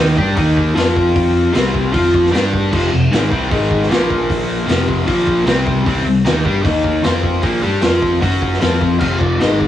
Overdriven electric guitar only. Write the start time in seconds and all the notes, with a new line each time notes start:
Already playing: D#3
0.00 A#3 D#4
0.17 G3 D4 G4
0.35 D#3 A#3 D#4
0.75 F3 C4 F4
1.53 C3 G3 C4
1.92 F3 C4 F4
2.31 G3 D4 G4
2.72 F2 C3 F3
2.92 F2 C3
3.11 G#2 D#3 G#3
3.30 C3 G3 C4
3.50 G#2 D#3 G#3
3.89 A#2 F3 A#3
4.67 F2 C3 F3
5.06 A#2 F3 A#3
5.46 C3 G3 C4
5.86 C3 G3 C4
6.06 C3 G3
6.25 D#3 A#3 D#4
6.45 G3 D4 G4
6.64 D#3 A#3 D#4
7.04 F3 C4 F4
7.43 A#2 F3 A#3
7.62 G3 D4 G4
7.82 F3 C4 F4
8.22 F#3 C#4 F#4
8.61 F3 C4 F4
9.00 F2 C3 F3
9.40 G#2 D#3 G#3